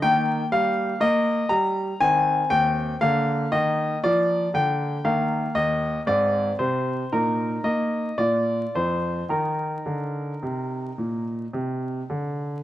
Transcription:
<<
  \new Staff \with { instrumentName = "Grand piano" } { \time 3/4 \key ees \major \tempo 4 = 58 << { g''8 f''8 ees''8 bes''8 aes''8 g''8 | f''8 ees''8 d''8 g''8 f''8 ees''8 | d''8 c''8 bes'8 ees''8 d''8 c''8 | bes'2 r4 | } \\ { bes2 c'4 | bes2 bes4 | c'4 ees'4 f'4 | ees'2. | } >> }
  \new Staff \with { instrumentName = "Grand piano" } { \clef bass \time 3/4 \key ees \major ees8 g8 bes8 g8 ees8 ees,8 | d8 ees8 f8 d8 ees8 ees,8 | aes,8 c8 bes,8 bes8 bes,8 f,8 | ees8 d8 c8 bes,8 c8 d8 | }
>>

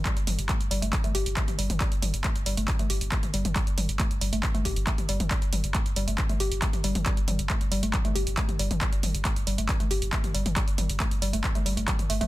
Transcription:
<<
  \new Staff \with { instrumentName = "Synth arpeggio sound" } { \clef bass \time 4/4 \key c \dorian \tempo 4 = 137 g16 r16 g16 r16 a16 r16 g16 a16 g16 a16 g'16 r16 a16 r16 g16 r16 | g16 r16 g16 r16 a16 r16 g16 a16 g16 a16 g'16 r16 a16 r16 g16 r16 | g16 r16 g16 r16 a16 r16 g16 a16 g16 a16 g'16 r16 a16 r16 g16 r16 | g16 r16 g16 r16 a16 r16 g16 a16 g16 a16 g'16 r16 a16 r16 g16 r16 |
g16 r16 g16 r16 a16 r16 g16 a16 g16 a16 g'16 r16 a16 r16 g16 r16 | g16 r16 g16 r16 a16 r16 g16 a16 g16 a16 g'16 r16 a16 r16 g16 r16 | g16 r16 g16 r16 a16 r16 g16 a16 g16 a16 g16 a16 g16 r16 a16 a16 | }
  \new Staff \with { instrumentName = "Sub bass" } { \clef bass \time 4/4 \key c \dorian r16 g,,16 g,,16 g,,16 r16 g,,16 g,,16 g,,16 r16 g,,16 g,,16 g,,16 r16 g,,16 g,,16 g,,16 | r16 g,,16 g,,16 g,,16 r16 g,,16 g,,16 g,,16 r16 g,,16 g,,16 g,,16 r16 g,,16 g,,16 g,,16 | r16 g,,16 g,,16 g,,16 r16 g,,16 g,,16 g,,16 r16 g,,16 g,,16 g,,16 r16 g,,16 g,,16 g,,16 | r16 g,,16 g,,16 g,,16 r16 g,,16 g,,16 g,,16 r16 g,,16 g,,16 g,,16 r16 g,,16 g,,16 g,,16 |
r16 g,,16 g,,16 g,,16 r16 g,,16 g,,16 g,,16 r16 g,,16 g,,16 g,,16 r16 g,,16 g,,16 g,,16 | r16 g,,16 g,,16 g,,16 r16 g,,16 g,,16 g,,16 r16 g,,16 g,,16 g,,16 r16 g,,16 g,,16 g,,16 | r16 g,,16 g,,16 g,,16 r16 g,,16 g,,16 g,,16 r16 g,,16 g,,16 g,,16 r16 g,,16 g,,16 g,,16 | }
  \new DrumStaff \with { instrumentName = "Drums" } \drummode { \time 4/4 <hc hh bd>16 hh16 <hho toml>16 hh16 <hc hh bd>16 hh16 hho16 hh16 <hc hh bd>16 <hh toml>16 hho16 hh16 <hc hh bd>16 <hh toml>16 hho16 <hh toml>16 | <hc hh bd>16 hh16 <hho toml>16 hh16 <hc hh bd>16 hh16 hho16 hh16 <hc hh bd>16 <hh toml>16 hho16 hh16 <hc hh bd>16 <hh toml>16 hho16 <hh toml>16 | <hc hh bd>16 hh16 <hho toml>16 hh16 <hc hh bd>16 hh16 hho16 hh16 <hc hh bd>16 <hh toml>16 <hho bd>16 hh16 <hc hh bd>16 <hh toml>16 hho16 <hh toml>16 | <hc hh bd>16 hh16 <hho toml>16 hh16 <hc hh bd>16 hh16 hho16 hh16 <hc hh bd>16 <hh toml>16 hho16 hh16 <hc hh bd>16 <hh toml>16 hho16 <hh toml>16 |
<hc hh bd>16 hh16 <hho toml>16 hh16 <hc hh bd>16 hh16 hho16 hh16 <hc hh bd>16 <hh toml>16 hho16 hh16 <hc hh bd>16 <hh toml>16 hho16 <hh toml>16 | <hc hh bd>16 hh16 <hho toml>16 hh16 <hc hh bd>16 hh16 hho16 hh16 <hc hh bd>16 <hh toml>16 hho16 hh16 <hc hh bd>16 <hh toml>16 hho16 <hh toml>16 | <hc hh bd>16 hh16 <hho toml>16 hh16 <hc hh bd>16 hh16 hho16 hh16 <hc hh bd>16 <hh toml>16 hho16 hh16 <hc hh bd>16 <hh toml>16 hho16 <hh toml>16 | }
>>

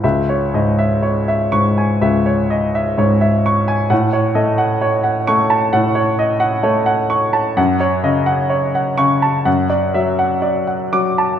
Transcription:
<<
  \new Staff \with { instrumentName = "Grand piano" } { \time 4/4 \key cis \minor \tempo 4 = 64 e''16 cis''16 dis''16 e''16 cis''16 e''8 gis''16 e''16 cis''16 dis''16 e''16 cis''16 e''16 cis'''16 gis''16 | fis''16 cis''16 dis''16 fis''16 cis''16 fis''8 a''16 fis''16 cis''16 dis''16 fis''16 cis''16 fis''16 cis'''16 a''16 | fis''16 cis''16 dis''16 fis''16 cis''16 fis''8 a''16 fis''16 d''16 e''16 fis''16 d''16 fis''8 a''16 | }
  \new Staff \with { instrumentName = "Grand piano" } { \clef bass \time 4/4 \key cis \minor cis,8 gis,4 <gis, cis'''>8 cis,4 gis,4 | a,8 a4 <a cis'''>8 a,4 a4 | fis,8 cis4 <cis cis'''>8 fis,8 fis4 <fis d'''>8 | }
>>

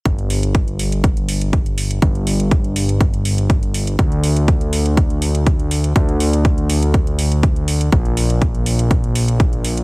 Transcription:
<<
  \new Staff \with { instrumentName = "Analog synth bass" } { \clef bass \time 4/4 \key g \dorian \tempo 4 = 122 g,,1 | g,,1 | d,1 | d,1 |
bes,,1 | }
  \new DrumStaff \with { instrumentName = "Drums" } \drummode { \time 4/4 <hh bd>16 hh16 hho16 hh16 <hh bd>16 hh16 hho16 hh16 <hh bd>16 hh16 hho16 hh16 <hh bd>16 hh16 hho16 hh16 | <hh bd>16 hh16 hho16 hh16 <hh bd>16 hh16 hho16 hh16 <hh bd>16 hh16 hho16 hh16 <hh bd>16 hh16 hho16 hh16 | <hh bd>16 hh16 hho16 hh16 <hh bd>16 hh16 hho16 hh16 <hh bd>16 hh16 hho16 hh16 <hh bd>16 hh16 hho16 hh16 | <hh bd>16 hh16 hho16 hh16 <hh bd>16 hh16 hho16 hh16 <hh bd>16 hh16 hho16 hh16 <hh bd>16 hh16 hho16 hh16 |
<hh bd>16 hh16 hho16 hh16 <hh bd>16 hh16 hho16 hh16 <hh bd>16 hh16 hho16 hh16 <hh bd>16 hh16 hho16 hh16 | }
>>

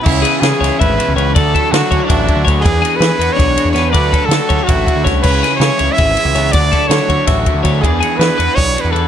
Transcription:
<<
  \new Staff \with { instrumentName = "Clean electric guitar" } { \time 7/8 \key d \lydian \tempo 4 = 162 cis''8 gis'4 cis''8 e''4 cis''8 | d''8 a'4 cis''8 e''4 cis''8 | d''8 gis'4 b'8 d'4 b'8 | d''8 a'4 cis''8 e''4 cis''8 |
cis''8 gis'4 cis''8 e''4 cis''8 | d''8 a'4 cis''8 e''4 cis''8 | d''8 gis'4 b'8 d''4 b'8 | }
  \new Staff \with { instrumentName = "Trumpet" } { \time 7/8 \key d \lydian e'4 gis'4 b'4 b'8 | a'4 fis'4 d'4 r8 | gis'4 b'4 cis''4 cis''8 | b'4 a'4 fis'4 r8 |
b'4 cis''4 e''4. | d''4 cis''4~ cis''16 r4 r16 | gis'4 b'4 cis''8. b'16 a'8 | }
  \new Staff \with { instrumentName = "Clean electric guitar" } { \time 7/8 \key d \lydian << { r8 b4 e'2 | r8 e'4 cis'16 e'16 fis'8 e'8 a8 | r8 fis'4 fis'8 gis'8 fis'8 d'8 | <fis e' fis'>8 cis'16 e'8. cis'16 e'16 e'8 e'8 cis'8 |
r8 e'4 e'8 gis'8 e'8 b8 | r8 e'4 e'8 fis'8 e'8 a8 | r8 fis'4 fis'8 gis'8 fis'8 d'8 | } \\ { cis4 e4 a,8 b,8 cis8 | d4 fis2~ fis8 | e,4 e2~ e8 | d4 fis2~ fis8 |
cis4 e2~ e8 | d4 fis2~ fis8 | e,4 e2~ e8 | } >> }
  \new Staff \with { instrumentName = "Overdriven electric guitar" } { \time 7/8 \key d \lydian <cis e gis cis' gis'>4 <cis e gis cis' gis'>8 <gis cis' gis'>4 <gis cis' gis'>4 | <d fis a d' fis'>4 <d fis a d' fis'>8 <a d' fis'>4 <a d' fis'>4 | <e b d' gis'>4 <e b d' gis'>8 <b d' gis'>4 <b d' gis'>4 | <d fis a d' fis'>4 <d fis a d' fis'>8 <a d' fis'>4 <a d' fis'>4 |
<cis e gis cis' gis'>4 <cis e gis cis' gis'>8 <gis cis' gis'>4 <gis cis' gis'>4 | <d fis a d' fis'>4 <d fis a d' fis'>8 <a d' fis'>4 <a d' fis'>4 | <e b d' gis'>4 <e b d' gis'>8 <b d' gis'>4 <b d' gis'>4 | }
  \new Staff \with { instrumentName = "Picked electric bass" } { \clef bass \time 7/8 \key d \lydian cis,8 r8 cis16 r16 cis,16 r16 gis,,8 r16 cis,16 cis,8 | d,8 r8 d16 r16 d,16 r16 a,,8 r16 d,16 d,8 | e,8 r8 e16 r16 e,16 r16 b,,8 r16 e,16 e,8 | d,8 r8 d16 r16 d,16 r16 a,,8 r16 d,16 c,8 |
cis,8 r8 cis16 r16 cis,16 r16 gis,,8 r16 cis,16 cis,8 | d,8 r8 d16 r16 d,16 r16 a,,8 r16 d,16 d,8 | e,8 r8 e16 r16 e,16 r16 b,,8 r16 e,16 e,8 | }
  \new DrumStaff \with { instrumentName = "Drums" } \drummode { \time 7/8 <cymc bd>8 cymr8 <cymr sn>8 <cymr sn>8 <bd cymr>8 cymr8 cymr8 | <bd cymr>8 <bd cymr>8 <cymr sn>8 <bd cymr>8 <bd cymr>8 <bd cymr>8 <bd cymr>8 | <bd cymr>8 cymr8 <cymr sn>8 cymr8 <bd cymr sn>8 cymr8 <cymr sn>8 | <bd cymr>8 <bd cymr>8 <cymr sn>8 <bd cymr>8 <bd cymr>8 <bd cymr>8 <bd cymr sn>8 |
<cymc bd>8 <cymr sn>8 <cymr sn>8 cymr8 <bd cymr>8 cymr8 <cymr sn>8 | <bd cymr>8 <bd cymr>8 <cymr sn>8 <bd cymr>8 <bd cymr sn>8 <bd cymr>8 <bd cymr>8 | <bd cymr>8 cymr8 <cymr sn>8 cymr8 <bd cymr sn>8 cymr8 cymr8 | }
>>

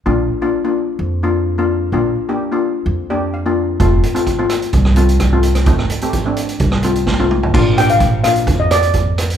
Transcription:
<<
  \new Staff \with { instrumentName = "Steel pan" } { \time 4/4 \key bes \major \tempo 4 = 128 r1 | r1 | r1 | r1 |
r8 g''16 f''8. f''8. ees''16 d''4. | }
  \new Staff \with { instrumentName = "Steel pan" } { \time 4/4 \key bes \major << { r1 | r2 r8 d''8 f''4 | r1 | r1 |
r1 | } \\ { <bes d' f'>8 r16 <bes d' f'>16 r16 <bes d' f'>8. r8 <bes d' f'>8 r16 <bes d' f'>8 r16 | <bes d' f'>8 r16 <bes d' g'>16 r16 <bes d' f'>8. r8 <bes d' g'>8 r16 <bes d' f'>8 r16 | <a c' f'>8 r16 <a c' f'>16 r16 <a c' f'>8. r8 <a c' f'>8 r16 <a c' f'>8 r16 | <a c' ees'>8 r16 <a c' g'>16 r16 <a c' d'>8. r8 <a c' f'>8 r16 <a c' f'>8 r16 |
<bes d' f'>16 r16 <bes d' g'>8 r8 <bes d' f'>4~ <bes d' f'>16 r4 r16 | } >> }
  \new Staff \with { instrumentName = "Upright bass" } { \clef bass \time 4/4 \key bes \major bes,,8 r4. f,2 | bes,,8 r4. f,2 | f,,8 r4. c,2 | f,,8 r4. c,2 |
bes,,4 bes,,4 f,2 | }
  \new DrumStaff \with { instrumentName = "Drums" } \drummode { \time 4/4 r4 r4 r4 r4 | r4 r4 r4 r4 | <hh bd>8 hh16 hh16 <hh bd>8 <hh ss>16 hh16 <hh bd>16 ss16 hh16 hh16 <hh bd ss>8 hh16 <hh ss>16 | <hh bd>16 ss16 hh16 hh16 <hh bd>8 hh16 hh16 <hh bd>16 ss16 hh16 hh16 <bd sn>16 tommh16 toml16 tomfh16 |
<cymc bd>8 <hh ss>16 hh16 <hh bd>8 <hh ss>16 hh16 <hh bd>8 <hh ss>16 hh16 <hh bd>8 <hh ss>16 hh16 | }
>>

